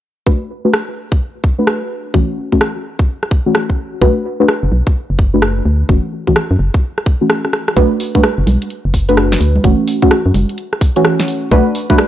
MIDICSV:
0, 0, Header, 1, 4, 480
1, 0, Start_track
1, 0, Key_signature, 2, "minor"
1, 0, Tempo, 468750
1, 272, Time_signature, 4, 2, 24, 8
1, 12367, End_track
2, 0, Start_track
2, 0, Title_t, "Synth stab"
2, 0, Program_c, 0, 62
2, 272, Note_on_c, 0, 71, 105
2, 273, Note_on_c, 0, 57, 95
2, 273, Note_on_c, 0, 62, 84
2, 273, Note_on_c, 0, 66, 87
2, 401, Note_off_c, 0, 57, 0
2, 401, Note_off_c, 0, 62, 0
2, 401, Note_off_c, 0, 66, 0
2, 401, Note_off_c, 0, 71, 0
2, 664, Note_on_c, 0, 57, 73
2, 664, Note_on_c, 0, 62, 69
2, 664, Note_on_c, 0, 66, 67
2, 664, Note_on_c, 0, 71, 81
2, 738, Note_off_c, 0, 57, 0
2, 738, Note_off_c, 0, 62, 0
2, 738, Note_off_c, 0, 66, 0
2, 738, Note_off_c, 0, 71, 0
2, 1623, Note_on_c, 0, 62, 71
2, 1624, Note_on_c, 0, 57, 74
2, 1624, Note_on_c, 0, 66, 69
2, 1624, Note_on_c, 0, 71, 83
2, 2170, Note_off_c, 0, 62, 0
2, 2171, Note_off_c, 0, 57, 0
2, 2171, Note_off_c, 0, 66, 0
2, 2171, Note_off_c, 0, 71, 0
2, 2190, Note_on_c, 0, 52, 77
2, 2190, Note_on_c, 0, 57, 73
2, 2191, Note_on_c, 0, 61, 71
2, 2191, Note_on_c, 0, 66, 86
2, 2547, Note_off_c, 0, 52, 0
2, 2547, Note_off_c, 0, 57, 0
2, 2548, Note_off_c, 0, 61, 0
2, 2548, Note_off_c, 0, 66, 0
2, 2583, Note_on_c, 0, 61, 82
2, 2583, Note_on_c, 0, 66, 99
2, 2584, Note_on_c, 0, 52, 86
2, 2584, Note_on_c, 0, 57, 80
2, 2725, Note_off_c, 0, 52, 0
2, 2725, Note_off_c, 0, 57, 0
2, 2725, Note_off_c, 0, 61, 0
2, 2725, Note_off_c, 0, 66, 0
2, 3544, Note_on_c, 0, 52, 73
2, 3544, Note_on_c, 0, 57, 69
2, 3544, Note_on_c, 0, 61, 68
2, 3545, Note_on_c, 0, 66, 78
2, 4091, Note_off_c, 0, 52, 0
2, 4091, Note_off_c, 0, 57, 0
2, 4091, Note_off_c, 0, 61, 0
2, 4091, Note_off_c, 0, 66, 0
2, 4112, Note_on_c, 0, 57, 98
2, 4112, Note_on_c, 0, 62, 87
2, 4112, Note_on_c, 0, 66, 87
2, 4113, Note_on_c, 0, 71, 108
2, 4241, Note_off_c, 0, 57, 0
2, 4241, Note_off_c, 0, 62, 0
2, 4241, Note_off_c, 0, 66, 0
2, 4241, Note_off_c, 0, 71, 0
2, 4505, Note_on_c, 0, 57, 72
2, 4505, Note_on_c, 0, 62, 67
2, 4505, Note_on_c, 0, 66, 69
2, 4505, Note_on_c, 0, 71, 82
2, 4579, Note_off_c, 0, 57, 0
2, 4579, Note_off_c, 0, 62, 0
2, 4579, Note_off_c, 0, 66, 0
2, 4579, Note_off_c, 0, 71, 0
2, 5465, Note_on_c, 0, 57, 75
2, 5465, Note_on_c, 0, 62, 68
2, 5465, Note_on_c, 0, 71, 85
2, 5466, Note_on_c, 0, 66, 67
2, 6011, Note_off_c, 0, 57, 0
2, 6011, Note_off_c, 0, 71, 0
2, 6012, Note_off_c, 0, 62, 0
2, 6012, Note_off_c, 0, 66, 0
2, 6033, Note_on_c, 0, 66, 87
2, 6034, Note_on_c, 0, 52, 80
2, 6034, Note_on_c, 0, 57, 72
2, 6034, Note_on_c, 0, 61, 71
2, 6389, Note_off_c, 0, 52, 0
2, 6389, Note_off_c, 0, 57, 0
2, 6389, Note_off_c, 0, 61, 0
2, 6389, Note_off_c, 0, 66, 0
2, 6425, Note_on_c, 0, 52, 89
2, 6425, Note_on_c, 0, 57, 84
2, 6425, Note_on_c, 0, 61, 83
2, 6425, Note_on_c, 0, 66, 95
2, 6565, Note_off_c, 0, 61, 0
2, 6566, Note_off_c, 0, 52, 0
2, 6566, Note_off_c, 0, 57, 0
2, 6566, Note_off_c, 0, 66, 0
2, 7385, Note_on_c, 0, 52, 75
2, 7385, Note_on_c, 0, 66, 84
2, 7386, Note_on_c, 0, 57, 69
2, 7386, Note_on_c, 0, 61, 68
2, 7931, Note_off_c, 0, 52, 0
2, 7931, Note_off_c, 0, 66, 0
2, 7932, Note_off_c, 0, 57, 0
2, 7932, Note_off_c, 0, 61, 0
2, 7953, Note_on_c, 0, 57, 98
2, 7953, Note_on_c, 0, 62, 88
2, 7953, Note_on_c, 0, 66, 90
2, 7953, Note_on_c, 0, 71, 108
2, 8081, Note_off_c, 0, 57, 0
2, 8081, Note_off_c, 0, 66, 0
2, 8081, Note_off_c, 0, 71, 0
2, 8082, Note_off_c, 0, 62, 0
2, 8346, Note_on_c, 0, 62, 69
2, 8346, Note_on_c, 0, 66, 70
2, 8347, Note_on_c, 0, 57, 76
2, 8347, Note_on_c, 0, 71, 84
2, 8419, Note_off_c, 0, 57, 0
2, 8419, Note_off_c, 0, 62, 0
2, 8419, Note_off_c, 0, 66, 0
2, 8419, Note_off_c, 0, 71, 0
2, 9305, Note_on_c, 0, 57, 75
2, 9305, Note_on_c, 0, 62, 71
2, 9305, Note_on_c, 0, 66, 70
2, 9305, Note_on_c, 0, 71, 86
2, 9851, Note_off_c, 0, 57, 0
2, 9851, Note_off_c, 0, 62, 0
2, 9851, Note_off_c, 0, 66, 0
2, 9851, Note_off_c, 0, 71, 0
2, 9872, Note_on_c, 0, 52, 78
2, 9872, Note_on_c, 0, 57, 72
2, 9872, Note_on_c, 0, 61, 74
2, 9872, Note_on_c, 0, 66, 89
2, 10228, Note_off_c, 0, 52, 0
2, 10228, Note_off_c, 0, 57, 0
2, 10228, Note_off_c, 0, 61, 0
2, 10228, Note_off_c, 0, 66, 0
2, 10264, Note_on_c, 0, 52, 87
2, 10264, Note_on_c, 0, 57, 83
2, 10264, Note_on_c, 0, 61, 84
2, 10264, Note_on_c, 0, 66, 97
2, 10405, Note_off_c, 0, 52, 0
2, 10405, Note_off_c, 0, 57, 0
2, 10405, Note_off_c, 0, 61, 0
2, 10405, Note_off_c, 0, 66, 0
2, 11224, Note_on_c, 0, 57, 72
2, 11224, Note_on_c, 0, 66, 84
2, 11225, Note_on_c, 0, 52, 75
2, 11225, Note_on_c, 0, 61, 72
2, 11771, Note_off_c, 0, 52, 0
2, 11771, Note_off_c, 0, 57, 0
2, 11771, Note_off_c, 0, 61, 0
2, 11771, Note_off_c, 0, 66, 0
2, 11793, Note_on_c, 0, 57, 96
2, 11793, Note_on_c, 0, 62, 89
2, 11793, Note_on_c, 0, 66, 88
2, 11793, Note_on_c, 0, 71, 105
2, 11921, Note_off_c, 0, 57, 0
2, 11921, Note_off_c, 0, 62, 0
2, 11921, Note_off_c, 0, 66, 0
2, 11922, Note_off_c, 0, 71, 0
2, 12185, Note_on_c, 0, 57, 77
2, 12185, Note_on_c, 0, 62, 72
2, 12185, Note_on_c, 0, 66, 70
2, 12185, Note_on_c, 0, 71, 83
2, 12259, Note_off_c, 0, 57, 0
2, 12259, Note_off_c, 0, 62, 0
2, 12259, Note_off_c, 0, 66, 0
2, 12259, Note_off_c, 0, 71, 0
2, 12367, End_track
3, 0, Start_track
3, 0, Title_t, "FM bass"
3, 0, Program_c, 1, 39
3, 4111, Note_on_c, 1, 35, 94
3, 4219, Note_off_c, 1, 35, 0
3, 4743, Note_on_c, 1, 30, 93
3, 4806, Note_off_c, 1, 30, 0
3, 4831, Note_on_c, 1, 35, 104
3, 4939, Note_off_c, 1, 35, 0
3, 5224, Note_on_c, 1, 30, 77
3, 5750, Note_off_c, 1, 30, 0
3, 5791, Note_on_c, 1, 38, 87
3, 5980, Note_off_c, 1, 38, 0
3, 6031, Note_on_c, 1, 30, 96
3, 6139, Note_off_c, 1, 30, 0
3, 6664, Note_on_c, 1, 42, 96
3, 6726, Note_off_c, 1, 42, 0
3, 6751, Note_on_c, 1, 30, 102
3, 6859, Note_off_c, 1, 30, 0
3, 7952, Note_on_c, 1, 35, 98
3, 8059, Note_off_c, 1, 35, 0
3, 8584, Note_on_c, 1, 30, 94
3, 8646, Note_off_c, 1, 30, 0
3, 8671, Note_on_c, 1, 35, 100
3, 8779, Note_off_c, 1, 35, 0
3, 9065, Note_on_c, 1, 30, 83
3, 9590, Note_off_c, 1, 30, 0
3, 9632, Note_on_c, 1, 38, 86
3, 9820, Note_off_c, 1, 38, 0
3, 9872, Note_on_c, 1, 30, 96
3, 9979, Note_off_c, 1, 30, 0
3, 10504, Note_on_c, 1, 42, 94
3, 10566, Note_off_c, 1, 42, 0
3, 10592, Note_on_c, 1, 30, 101
3, 10699, Note_off_c, 1, 30, 0
3, 11791, Note_on_c, 1, 35, 94
3, 11899, Note_off_c, 1, 35, 0
3, 12367, End_track
4, 0, Start_track
4, 0, Title_t, "Drums"
4, 272, Note_on_c, 9, 36, 108
4, 374, Note_off_c, 9, 36, 0
4, 753, Note_on_c, 9, 37, 112
4, 855, Note_off_c, 9, 37, 0
4, 1145, Note_on_c, 9, 36, 98
4, 1247, Note_off_c, 9, 36, 0
4, 1472, Note_on_c, 9, 36, 101
4, 1574, Note_off_c, 9, 36, 0
4, 1712, Note_on_c, 9, 37, 105
4, 1815, Note_off_c, 9, 37, 0
4, 2192, Note_on_c, 9, 36, 114
4, 2294, Note_off_c, 9, 36, 0
4, 2584, Note_on_c, 9, 36, 58
4, 2672, Note_on_c, 9, 37, 116
4, 2687, Note_off_c, 9, 36, 0
4, 2774, Note_off_c, 9, 37, 0
4, 3064, Note_on_c, 9, 36, 105
4, 3167, Note_off_c, 9, 36, 0
4, 3305, Note_on_c, 9, 37, 60
4, 3392, Note_on_c, 9, 36, 107
4, 3408, Note_off_c, 9, 37, 0
4, 3494, Note_off_c, 9, 36, 0
4, 3633, Note_on_c, 9, 37, 110
4, 3735, Note_off_c, 9, 37, 0
4, 3784, Note_on_c, 9, 36, 60
4, 3887, Note_off_c, 9, 36, 0
4, 4112, Note_on_c, 9, 36, 114
4, 4214, Note_off_c, 9, 36, 0
4, 4592, Note_on_c, 9, 37, 118
4, 4694, Note_off_c, 9, 37, 0
4, 4984, Note_on_c, 9, 36, 112
4, 5087, Note_off_c, 9, 36, 0
4, 5312, Note_on_c, 9, 36, 114
4, 5414, Note_off_c, 9, 36, 0
4, 5552, Note_on_c, 9, 37, 117
4, 5654, Note_off_c, 9, 37, 0
4, 6031, Note_on_c, 9, 36, 113
4, 6134, Note_off_c, 9, 36, 0
4, 6424, Note_on_c, 9, 36, 60
4, 6512, Note_on_c, 9, 37, 117
4, 6527, Note_off_c, 9, 36, 0
4, 6614, Note_off_c, 9, 37, 0
4, 6904, Note_on_c, 9, 36, 112
4, 7007, Note_off_c, 9, 36, 0
4, 7145, Note_on_c, 9, 37, 61
4, 7232, Note_on_c, 9, 36, 110
4, 7248, Note_off_c, 9, 37, 0
4, 7335, Note_off_c, 9, 36, 0
4, 7472, Note_on_c, 9, 37, 114
4, 7574, Note_off_c, 9, 37, 0
4, 7625, Note_on_c, 9, 37, 51
4, 7713, Note_off_c, 9, 37, 0
4, 7713, Note_on_c, 9, 37, 73
4, 7815, Note_off_c, 9, 37, 0
4, 7865, Note_on_c, 9, 37, 77
4, 7952, Note_on_c, 9, 36, 110
4, 7952, Note_on_c, 9, 42, 66
4, 7968, Note_off_c, 9, 37, 0
4, 8055, Note_off_c, 9, 36, 0
4, 8055, Note_off_c, 9, 42, 0
4, 8193, Note_on_c, 9, 46, 108
4, 8295, Note_off_c, 9, 46, 0
4, 8345, Note_on_c, 9, 36, 100
4, 8346, Note_on_c, 9, 63, 53
4, 8433, Note_on_c, 9, 37, 116
4, 8448, Note_off_c, 9, 36, 0
4, 8448, Note_off_c, 9, 63, 0
4, 8535, Note_off_c, 9, 37, 0
4, 8674, Note_on_c, 9, 46, 106
4, 8674, Note_on_c, 9, 63, 73
4, 8776, Note_off_c, 9, 46, 0
4, 8776, Note_off_c, 9, 63, 0
4, 8826, Note_on_c, 9, 42, 64
4, 8913, Note_off_c, 9, 42, 0
4, 8913, Note_on_c, 9, 42, 65
4, 9015, Note_off_c, 9, 42, 0
4, 9152, Note_on_c, 9, 36, 61
4, 9153, Note_on_c, 9, 46, 109
4, 9255, Note_off_c, 9, 36, 0
4, 9255, Note_off_c, 9, 46, 0
4, 9306, Note_on_c, 9, 42, 63
4, 9393, Note_on_c, 9, 37, 105
4, 9408, Note_off_c, 9, 42, 0
4, 9495, Note_off_c, 9, 37, 0
4, 9545, Note_on_c, 9, 38, 58
4, 9545, Note_on_c, 9, 42, 50
4, 9633, Note_on_c, 9, 46, 104
4, 9648, Note_off_c, 9, 38, 0
4, 9648, Note_off_c, 9, 42, 0
4, 9735, Note_off_c, 9, 46, 0
4, 9785, Note_on_c, 9, 63, 55
4, 9872, Note_on_c, 9, 36, 116
4, 9873, Note_on_c, 9, 42, 62
4, 9887, Note_off_c, 9, 63, 0
4, 9974, Note_off_c, 9, 36, 0
4, 9975, Note_off_c, 9, 42, 0
4, 10113, Note_on_c, 9, 46, 105
4, 10215, Note_off_c, 9, 46, 0
4, 10265, Note_on_c, 9, 36, 107
4, 10353, Note_on_c, 9, 37, 118
4, 10367, Note_off_c, 9, 36, 0
4, 10455, Note_off_c, 9, 37, 0
4, 10592, Note_on_c, 9, 46, 100
4, 10592, Note_on_c, 9, 63, 71
4, 10695, Note_off_c, 9, 46, 0
4, 10695, Note_off_c, 9, 63, 0
4, 10746, Note_on_c, 9, 42, 61
4, 10832, Note_off_c, 9, 42, 0
4, 10832, Note_on_c, 9, 42, 60
4, 10935, Note_off_c, 9, 42, 0
4, 10985, Note_on_c, 9, 37, 62
4, 11071, Note_on_c, 9, 36, 113
4, 11072, Note_on_c, 9, 46, 98
4, 11087, Note_off_c, 9, 37, 0
4, 11174, Note_off_c, 9, 36, 0
4, 11174, Note_off_c, 9, 46, 0
4, 11225, Note_on_c, 9, 42, 62
4, 11311, Note_on_c, 9, 37, 114
4, 11327, Note_off_c, 9, 42, 0
4, 11414, Note_off_c, 9, 37, 0
4, 11465, Note_on_c, 9, 38, 56
4, 11465, Note_on_c, 9, 42, 49
4, 11551, Note_on_c, 9, 46, 99
4, 11567, Note_off_c, 9, 38, 0
4, 11567, Note_off_c, 9, 42, 0
4, 11653, Note_off_c, 9, 46, 0
4, 11791, Note_on_c, 9, 36, 119
4, 11792, Note_on_c, 9, 42, 61
4, 11894, Note_off_c, 9, 36, 0
4, 11894, Note_off_c, 9, 42, 0
4, 12032, Note_on_c, 9, 46, 99
4, 12135, Note_off_c, 9, 46, 0
4, 12184, Note_on_c, 9, 36, 111
4, 12185, Note_on_c, 9, 63, 59
4, 12272, Note_on_c, 9, 37, 123
4, 12286, Note_off_c, 9, 36, 0
4, 12287, Note_off_c, 9, 63, 0
4, 12367, Note_off_c, 9, 37, 0
4, 12367, End_track
0, 0, End_of_file